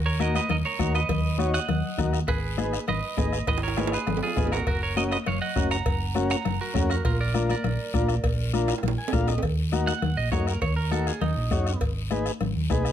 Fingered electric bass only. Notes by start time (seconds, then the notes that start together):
Already playing: D#2
0.49 D#2
0.79 D#2
1.09 D#2
1.69 D#2
1.99 D#2
2.28 G#1
2.88 G#1
3.18 G#1
3.47 G#1
4.07 G#1
4.37 G#1
4.67 F#1
5.27 F#1
5.56 F#1
5.86 F#1
6.46 F#1
6.75 F2
7.05 A#1
7.64 A#1
7.94 A#1
8.24 A#1
8.83 A#1
9.13 A#1
9.43 D#2
10.02 D#2
10.17 A#1
10.32 F#2
10.62 D#2
11.21 D#2
11.37 A#1
11.51 F#2
11.81 G#1
12.41 G#1
12.56 D#2
12.70 B1